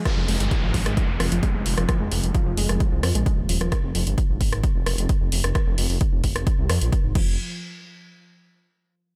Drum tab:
CC |----------------|----------------|----------------|--------------x-|
HH |x-oxx-oxx-oxx-ox|x-oxx-oxx-oxx-ox|x-oxx-oxx-oxx-ox|x-oox-oxx-oxx---|
SD |r------r--r----r|r------r--r----r|r------r--r----r|r------r--r-----|
BD |o---o-o-o---o---|o---o---o---o---|o---o-o-o---o---|o---o-o-o---o-o-|

CC |----------------|
HH |----------------|
SD |----------------|
BD |----------------|